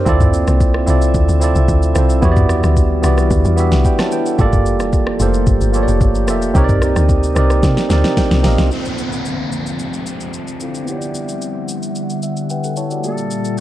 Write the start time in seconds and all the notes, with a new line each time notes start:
Already playing: C3 C4
0.05 D2 F3 C4 E4 F4 A4 D5 E5, kick, shaker
0.20 kick, mid tom, shaker
0.34 shaker
0.48 C2, cross-stick, shaker
0.61 kick, shaker
0.74 cross-stick
0.86 C2 C4 E4 F4 A4 D5, shaker
1.02 shaker
1.14 D2, kick, shaker
1.29 D2, shaker
1.40 C4 E4 F4 A4 D5, shaker
1.56 C2, shaker
1.68 D2, kick, shaker
1.83 shaker
1.94 C2 C4 E4 F4 A4 C5, cross-stick, shaker
2.10 shaker
2.21 E2 E3 G3 B3 D4 E4 F#4 G4 C#5, kick, shaker
2.32 D5
2.37 kick, mid tom, shaker
2.49 cross-stick, shaker
2.64 D2, cross-stick, shaker
2.77 kick, shaker
3.02 C2 B3 E4 F#4 G4 D5, cross-stick, shaker
3.18 cross-stick, shaker
3.31 D2, kick, shaker
3.45 E2, shaker
3.56 B3 E4 F#4 G4 E5, shaker
3.72 C2, snare, shaker
3.85 D5 G5 B5, kick, shaker
3.99 C#5 A5, cross-stick, snare, shaker
4.12 B4 G5, shaker
4.26 A4 F#5, shaker
4.38 G1 F3 A3 A#3 F4 G4 A4 D5, kick, shaker
4.44 A#3
4.53 kick, mid tom, shaker
4.66 shaker
4.80 F1, cross-stick, shaker
4.93 kick, shaker
5.07 cross-stick
5.19 F1 A3 F4 G4 A4 C5, shaker
5.25 A#3
5.34 shaker
5.47 G1, kick, shaker
5.61 G1, shaker
5.73 A#3 F4 G4 A4 C#5, shaker
5.83 D5
5.88 F1, shaker
6.01 G1, kick, shaker
6.15 shaker
6.27 F1 A#3 F4 G4 A4 E5, cross-stick, shaker
6.42 shaker
6.54 C2 C3 A#3 C4 D#4 G4 A#4 C#5, kick, shaker
6.64 D5
6.69 kick, mid tom, shaker
6.82 cross-stick, shaker
6.96 D2, cross-stick, shaker
7.09 kick, shaker
7.23 shaker
7.35 C2 C4 D#4 G4 A#4 D5, cross-stick, shaker
7.50 cross-stick, shaker
7.63 C3, kick, snare, shaker
7.77 snare, shaker
7.89 D2 C4 D4 G4 A#4 D5, snare, shaker
7.96 D#4
8.04 snare, shaker
8.17 G5, kick, snare, shaker
8.31 C2, snare, shaker
8.43 A#1 C4 D#4 G4 A#4 D#5 F5, snare, open hi-hat, shaker
8.58 C2, snare, shaker
8.68 D3 F3 C4 F4 E5, downlifter, shaker
8.72 A4
8.82 D5, shaker
8.98 shaker
9.12 shaker
9.25 F4, shaker
9.52 shaker
9.67 shaker
9.79 G4, shaker
9.94 shaker
10.06 shaker
10.20 shaker
10.34 A4, shaker
10.48 shaker
10.59 C4 E4 F4 G4 A4 F5, shaker
10.74 shaker
10.84 G3 B3 E4 F#5, shaker
10.90 G4 C#5
10.98 D5, shaker
11.15 shaker
11.29 shaker
11.42 shaker
11.68 shaker
11.83 shaker
11.95 shaker
12.10 shaker
12.23 E5, shaker
12.37 shaker
12.50 B4 F#5 G5, shaker
12.64 A4 F#5, shaker
12.77 E4 C#5 A5, shaker
12.91 F#4 D5, shaker
13.01 A#2 A3 F4 G4 A4, shaker
13.05 A#3 A4 D5
13.18 shaker
13.31 shaker
13.45 shaker